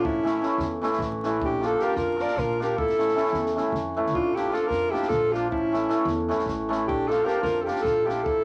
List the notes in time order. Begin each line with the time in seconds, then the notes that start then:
0.01 A1 C#4 E4, kick
0.23 E3 A3 C#4 E4, snare
0.42 E3 A3 C#4 E4, snare
0.58 E2, snare
0.82 E3 A3 C#4 E4, snare
0.93 snare
0.99 A1, kick, snare
1.24 E3 A3 C#4 E4, snare
1.39 A#1 D4, kick
1.45 G4
1.62 F3 A#3 D4 F4, snare
1.66 A4
1.79 F3 A#3 D4 F4 G4 A#4, snare
1.96 F2 F4 A#4, snare
2.18 F3 A#3 D4 F4 A#4 D5, snare
2.28 snare
2.37 A#1 F4 A#4, kick, snare
2.60 F3 A#3 D4 F4 G4 A#4, snare
2.77 A1 E4 A4, kick
2.89 snare
2.99 E3 A3 C#4 E4, snare
3.08 snare
3.15 E3 A3 C#4 E4, snare
3.25 snare
3.33 E2, snare
3.46 snare
3.56 E3 A3 C#4 E4, snare
3.72 F2, snare
3.96 E3 A3 C#4 E4
4.07 snare
4.14 A#1 D4 F4, kick
4.33 F3 E4 G4, snare
4.37 A#3 D4 F4
4.51 F3 A#3 D4 F4 A4, snare
4.67 F2 F4 A#4
4.71 snare
4.90 F3 A#3 D4 E4 G4
4.94 F4, snare
5.03 snare
5.09 A#1 F4 A4, kick, snare
5.32 F3 A#3 D4 F4, snare
5.50 A1 C#4 E4, kick
5.72 E3 A3 C#4 E4, snare
5.89 E3 A3 C#4 E4, snare
6.05 E2, snare
6.29 E3 A3 C#4 E4, snare
6.39 snare
6.46 A1, kick, snare
6.69 E3 A3 C#4 E4, snare
6.87 A#1 D4 G4, kick
7.07 F3 A#3 D4 F4 A4, snare
7.25 F3 A#3 D4 F4 G4 A#4, snare
7.41 F2 F4 A#4, snare
7.61 F4 G4 A4
7.66 F3 A#3 D4 F4, snare
7.76 snare
7.80 A#1 A4
7.84 F4, kick, snare
8.04 F3 A#3 D4 E4 F4 G4
8.09 snare
8.22 A1 E4 A4
8.26 kick